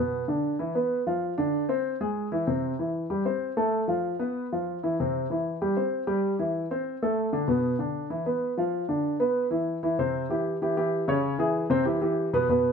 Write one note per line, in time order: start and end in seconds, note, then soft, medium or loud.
0.00 0.23 B2 medium
0.00 0.23 B3 medium
0.28 0.54 D3 medium
0.28 0.54 D4 medium
0.59 0.72 E3 medium
0.59 0.72 E4 medium
0.75 1.01 B3 medium
0.75 1.01 B4 medium
1.07 1.32 F3 medium
1.07 1.33 F4 medium
1.38 1.64 D3 medium
1.38 1.64 D4 medium
1.69 1.95 C4 medium
1.69 1.95 C5 medium
2.01 2.26 G#3 medium
2.01 2.26 G#4 medium
2.32 2.45 E3 medium
2.32 2.45 E4 medium
2.47 2.73 C3 medium
2.47 2.73 C4 medium
2.79 3.05 E3 medium
2.79 3.05 E4 medium
3.10 3.23 G3 medium
3.10 3.23 G4 medium
3.25 3.51 C4 medium
3.25 3.51 C5 medium
3.57 3.83 A3 medium
3.57 3.83 A4 medium
3.88 4.14 F3 medium
3.88 4.14 F4 medium
4.19 4.45 B3 medium
4.19 4.45 B4 medium
4.52 4.78 F3 medium
4.52 4.78 F4 medium
4.83 4.96 E3 medium
4.83 4.96 E4 medium
5.00 5.25 C3 medium
5.00 5.25 C4 medium
5.30 5.55 E3 medium
5.30 5.56 E4 medium
5.62 5.74 G3 medium
5.62 5.74 G4 medium
5.77 6.02 C4 medium
5.77 6.02 C5 medium
6.07 6.33 G3 medium
6.07 6.33 G4 medium
6.39 6.65 E3 medium
6.39 6.65 E4 medium
6.71 6.96 C4 medium
6.71 6.97 C5 medium
7.02 7.28 A3 medium
7.02 7.28 A4 medium
7.33 7.46 D3 medium
7.33 7.46 D4 medium
7.48 7.74 B2 medium
7.48 7.74 B3 medium
7.79 8.05 D3 medium
7.79 8.05 D4 medium
8.10 8.23 E3 medium
8.10 8.24 E4 medium
8.26 8.52 B3 medium
8.26 8.52 B4 medium
8.58 8.84 F3 medium
8.58 8.84 F4 medium
8.89 9.15 D3 medium
8.89 9.15 D4 medium
9.20 9.46 B3 medium
9.20 9.46 B4 medium
9.51 9.77 E3 medium
9.51 9.77 E4 medium
9.83 9.96 E3 medium
9.83 9.96 E4 medium
9.99 10.25 C3 medium
9.99 10.25 C4 medium
9.99 10.25 C5 medium
10.29 10.55 E3 medium
10.29 10.56 E4 medium
10.29 10.56 G4 medium
10.62 10.74 E3 medium
10.62 10.75 E4 medium
10.62 10.75 G4 medium
10.77 11.03 E3 medium
10.77 11.03 E4 medium
10.77 11.03 G4 medium
11.08 11.34 C#3 medium
11.08 11.34 C#4 medium
11.08 11.34 C#5 medium
11.38 11.64 E3 medium
11.38 11.65 E4 medium
11.38 11.65 G#4 medium
11.70 11.83 C3 medium
11.70 11.83 C4 medium
11.70 11.83 C5 medium
11.85 11.99 E3 medium
11.85 11.99 E4 medium
11.85 11.99 G4 medium
12.01 12.27 E3 medium
12.01 12.27 E4 medium
12.01 12.28 G4 medium
12.33 12.46 B2 medium
12.33 12.46 B3 medium
12.33 12.46 B4 medium
12.49 12.72 B2 medium
12.49 12.72 B3 medium
12.49 12.72 B4 medium